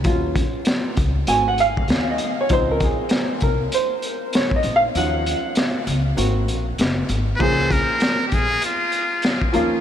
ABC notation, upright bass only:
X:1
M:4/4
L:1/16
Q:"Swing 16ths" 1/4=98
K:Db
V:1 name="Upright bass" clef=bass
E,,3 z3 D,,2 A,,,4 E,,2 z2 | D,,3 z3 C,,2 z6 B,,,2 | E,,3 z3 D,,2 A,,,2 B,,,2 G,,,2 A,,,2 | D,,3 z3 B,,,2 z6 E,,2 |]